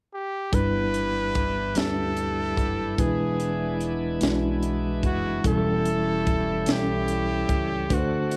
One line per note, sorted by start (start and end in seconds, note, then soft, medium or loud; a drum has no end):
0.14 0.56 G4 medium
0.52 1.71 G1 medium
0.52 1.72 G2 medium
0.52 2.95 E3 soft
0.52 1.36 G3 medium
0.52 2.97 G3 medium
0.52 2.95 B3 soft
0.52 5.41 B3 medium
0.52 1.36 D4 medium
0.52 2.95 D4 soft
0.52 5.41 D4 soft
0.52 5.41 E4 medium
0.52 1.37 E4 medium
0.52 2.95 G4 medium
0.52 1.37 B4 medium
0.52 1.79 B4 medium
0.52 kick medium
0.52 closed hi-hat medium
0.94 closed hi-hat soft
1.35 kick medium
1.35 closed hi-hat soft
1.75 2.54 D2 medium
1.75 2.59 G3 soft
1.75 2.59 D4 soft
1.75 2.60 E4 soft
1.75 2.60 G4 medium
1.75 3.02 A4 medium
1.75 snare medium
1.75 closed hi-hat medium
2.17 closed hi-hat soft
2.57 2.95 F#1 medium
2.57 kick medium
2.57 closed hi-hat soft
2.98 4.17 E1 medium
2.98 5.40 E3 medium
2.98 4.18 E3 soft
2.98 5.42 G#3 medium
2.98 3.82 G#3 medium
2.98 5.40 B3 soft
2.98 5.40 D4 soft
2.98 3.83 D4 medium
2.98 3.83 E4 medium
2.98 5.40 G#4 medium
2.98 3.92 G#4 medium
2.98 3.83 B4 medium
2.98 kick medium
2.98 closed hi-hat medium
3.40 closed hi-hat soft
3.81 closed hi-hat soft
4.21 4.99 B1 medium
4.21 5.05 G#3 medium
4.21 5.05 D4 medium
4.21 5.05 E4 medium
4.21 5.06 F#4 medium
4.21 snare medium
4.21 closed hi-hat medium
4.63 closed hi-hat soft
5.03 5.41 F#1 medium
5.03 5.43 F#4 medium
5.03 kick medium
5.03 closed hi-hat soft
5.44 6.63 E1 medium
5.44 6.64 E3 medium
5.44 7.87 E3 soft
5.44 6.28 G3 medium
5.44 7.89 G3 medium
5.44 7.87 A3 soft
5.44 7.89 A3 medium
5.44 6.28 C#4 medium
5.44 7.87 C#4 soft
5.44 7.89 C#4 medium
5.44 6.28 E4 medium
5.44 7.89 E4 medium
5.44 7.87 G4 medium
5.44 6.29 A4 medium
5.44 6.73 A4 medium
5.44 kick medium
5.44 closed hi-hat medium
5.85 closed hi-hat soft
6.27 kick medium
6.27 closed hi-hat soft
6.66 7.45 B1 medium
6.66 7.51 G3 soft
6.66 7.51 C#4 soft
6.66 7.51 E4 soft
6.66 7.52 A4 medium
6.66 snare medium
6.66 closed hi-hat medium
6.72 7.95 G4 medium
7.08 closed hi-hat soft
7.49 7.87 C#2 medium
7.49 kick medium
7.49 closed hi-hat soft
7.89 8.37 D2 medium
7.89 8.37 D3 medium
7.89 8.37 D3 soft
7.89 8.37 A3 soft
7.89 8.37 A3 medium
7.89 8.37 C4 soft
7.89 8.37 D4 medium
7.89 8.37 F#4 medium
7.89 8.37 A4 medium
7.89 7.97 B4 medium
7.89 8.37 F#5 medium
7.89 kick medium
7.89 closed hi-hat medium
7.93 8.37 F#4 medium
7.93 8.37 C5 medium
8.31 closed hi-hat soft